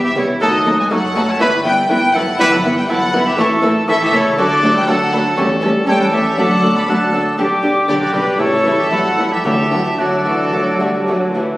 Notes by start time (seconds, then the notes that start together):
Already playing: E1 B5
0.04 E3 G4 E5
0.16 C#3 G3 B3 E4 G4 C#5
0.41 F#1 D#3 F#3 A3 D#4 F#4 A4 D#5 D#6
0.65 F#3 A3 D#4 A4
0.78 G#3 B4 G#5
0.90 F#1 F#3 A3 D#4 A4 F#5 C#6
1.15 F#3 A3 D#4 A4
1.28 A3 C#5 A5
1.40 G1 E3 G3 B3 E4 B4 E5 B5
1.65 E3 G3 B3 E4 B4 G5
1.89 G1 E3 G3 B3 E4 B4 G5 B5
2.14 E3 F#3 B3 E4 A4 F#5
2.39 G1 E3 G3 B3 E4 G4 B4 E5 B5
2.52 F#3 A4 F#5
2.64 E3 B3 E4
2.76 G3 B4 G5
2.89 G1 E3 F#3 B3 E4 A4 F#5
3.14 E3 B3 E4
3.26 E3 G4 E5
3.38 A1 A2 E3 A3 E4 A4 C#6
3.63 E3 A3 E4 A4 E6
3.88 A1 E3 A3 E4 A4 E5 C#6
4.01 E3 G4 E5
4.13 C#3 E3 A3 E4 A4 C#5
4.38 D2 D3 F#3 A3 D4 F#4 A4 D5 D6
4.63 F#3 A3 D4 A4
4.75 G3 B4 G5
4.87 D2 F#3 A3 D4 A4 F#5 A5
5.12 F#3 A3 D4 A4 B5
5.36 E2 G3 A3 C#4 A4 C#6
5.62 G3 A3 C#4 A4 A5
5.86 E2 G3 A3 C#4 A4 C#5 G5
6.00 G3 B4 G5
6.11 E3 G3 A3 C#4 G4 A4 E5
6.37 D2 F#3 A3 D4 F#4 A4 F#5 D6
6.62 F#3 A3 D4 F#4
6.76 B3 D5 B5
6.88 D2 F#3 A3 D4 F#4 A4 D5 A5 F#6
7.13 F#3 A3 D4 F#4 E6
7.38 B1 D3 G3 D4 G4 D6
7.62 D3 G3 D4 G4
7.88 B1 D3 G3 D4 G4 D5
8.01 D3 F#4 D5
8.13 B2 D3 G3 D4 G4 B4
8.39 A1 A2 C#3 E3 G3 A3 E4 A4 C#5 C#6
8.65 E3 G3 A3 E4
8.78 E3 G4 E5
8.90 A1 E3 F#3 G3 A3 E4 A4 F#5 B5
9.18 E3 G3 A3 E4
9.31 E3 G4 E5
9.44 D2 D3 E3 F#3 A3 D4 F#4 G4 A4 E5 A5
9.71 D3 F#3 A3 F#4
9.99 D2 D3 F#3 A3 D4 F#4 A4 D5
10.26 E3 A3 F#4
10.53 D2 F#3 A3 F#4
10.80 G3 A3 F#4
11.07 D2 F#3 A3 F#4
11.34 E3 A3 F#4